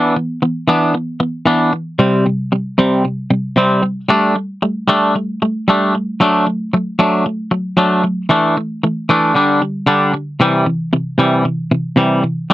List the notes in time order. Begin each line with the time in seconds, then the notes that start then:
Already playing: E3 B3 D4
0.16 E3 B3
0.42 E3 B3
0.68 E3 B3 D4
0.94 E3 B3
1.20 E3 B3
1.46 E3 B3 D4
1.73 E3 B3
1.99 C3 G3 C4
2.26 C3 G3
2.52 C3 G3
2.78 C3 G3 C4
3.04 C3
3.31 C3 G3
3.56 C3 G3 C4
3.83 C3 G3
4.09 G3 A3 D4
4.35 G3 A3
4.62 G3 A3
4.88 G3 A3 D4
5.15 G3 A3
5.42 G3 A3
5.68 G3 A3 D4
5.95 G3 A3
6.20 F#3 A3 D4
6.46 F#3 A3
6.74 F#3 A3
6.99 F#3 A3 D4
7.26 F#3 A3
7.51 F#3 A3
7.77 F#3 A3 D4
8.04 F#3 A3
8.29 E3 A3 D4
8.57 E3 A3
8.84 E3 A3
9.09 E3 A3 D4
9.35 D3 G3 D4
9.62 D3 G3
9.87 D3 G3 D4
10.14 D3 G3
10.40 C3 E3 G3
10.66 C3 E3
10.93 C3 E3
11.18 C3 E3 G3
11.45 C3 E3
11.72 C3 E3
11.96 C3 E3 G3
12.23 C3 E3
12.50 G3